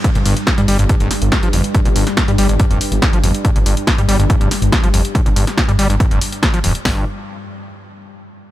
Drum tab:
HH |xxoxxxoxxxoxxxox|xxoxxxoxxxoxxxox|xxoxxxoxxxoxxxox|xxoxxxoxxxoxxxox|
SD |----o-----o-o---|---oo-------o---|----o-----o-o---|---oo-------o---|
BD |o---o---o---o---|o---o---o---o---|o---o---o---o---|o---o---o---o---|

HH |o---------------|
SD |o---------------|
BD |o---------------|